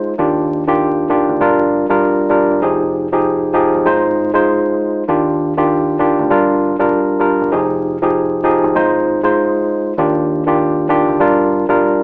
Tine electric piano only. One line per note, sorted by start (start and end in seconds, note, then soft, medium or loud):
0.00 0.13 G#3 medium
0.00 0.13 D#4 medium
0.00 0.13 F4 medium
0.00 0.13 C5 loud
0.18 0.63 D#3 medium
0.18 0.63 D4 medium
0.18 0.63 F4 medium
0.18 0.64 G4 loud
0.67 1.07 D#3 medium
0.67 1.07 D4 medium
0.67 1.07 F4 medium
0.67 1.08 G4 loud
1.09 1.40 D#3 medium
1.09 1.40 D4 medium
1.09 1.40 F4 medium
1.09 1.41 G4 loud
1.40 1.85 G3 loud
1.40 1.85 D4 medium
1.40 1.86 F4 medium
1.40 1.86 A#4 loud
1.89 2.28 G3 loud
1.89 2.29 D4 medium
1.89 2.29 F4 medium
1.89 2.30 A#4 loud
2.29 2.60 G3 medium
2.29 2.60 D4 medium
2.29 2.60 F4 medium
2.29 2.60 A#4 medium
2.61 3.07 F3 loud
2.61 3.07 D#4 medium
2.61 3.07 G4 medium
2.61 3.08 G#4 loud
3.12 3.52 F3 medium
3.12 3.52 D#4 medium
3.12 3.52 G4 medium
3.12 3.53 G#4 loud
3.54 3.85 F3 loud
3.54 3.85 D#4 medium
3.54 3.85 G4 medium
3.54 3.85 G#4 loud
3.85 4.30 G#3 medium
3.85 4.30 D#4 medium
3.85 4.30 F4 medium
3.85 4.31 C5 loud
4.34 5.02 G#3 loud
4.34 5.03 D#4 medium
4.34 5.03 F4 medium
4.34 5.03 C5 loud
5.08 5.53 D#3 medium
5.08 5.53 D4 medium
5.08 5.53 F4 medium
5.08 5.53 G4 loud
5.57 5.97 D#3 loud
5.57 5.97 D4 medium
5.57 5.97 F4 medium
5.57 5.97 G4 loud
5.99 6.30 D#3 medium
5.99 6.29 D4 medium
5.99 6.30 F4 medium
5.99 6.31 G4 loud
6.30 6.75 G3 medium
6.30 6.75 D4 medium
6.30 6.75 F4 medium
6.30 6.76 A#4 loud
6.79 7.18 G3 medium
6.79 7.19 D4 medium
6.79 7.19 F4 medium
6.79 7.20 A#4 loud
7.20 7.49 G3 medium
7.20 7.50 D4 medium
7.20 7.50 F4 medium
7.20 7.50 A#4 medium
7.51 7.97 F3 loud
7.51 7.97 D#4 medium
7.51 7.97 G4 medium
7.51 7.97 G#4 medium
8.02 8.42 F3 medium
8.02 8.42 D#4 medium
8.02 8.42 G4 medium
8.02 8.42 G#4 loud
8.44 8.75 F3 loud
8.44 8.74 D#4 medium
8.44 8.75 G4 medium
8.44 8.75 G#4 loud
8.75 9.20 G#3 medium
8.75 9.20 D#4 medium
8.75 9.20 F4 medium
8.75 9.21 C5 loud
9.23 9.92 G#3 medium
9.23 9.93 D#4 medium
9.23 9.93 F4 medium
9.23 9.93 C5 loud
9.98 10.42 D#3 loud
9.98 10.43 D4 medium
9.98 10.43 F4 medium
9.98 10.43 G4 loud
10.46 10.86 D#3 medium
10.46 10.87 D4 medium
10.46 10.87 F4 medium
10.46 10.87 G4 loud
10.89 11.20 D#3 medium
10.89 11.19 D4 medium
10.89 11.19 F4 medium
10.89 11.20 G4 loud
11.20 11.65 G3 loud
11.20 11.65 D4 medium
11.20 11.65 F4 medium
11.20 11.65 A#4 loud
11.69 12.03 G3 loud
11.69 12.03 D4 medium
11.69 12.03 F4 medium
11.69 12.03 A#4 loud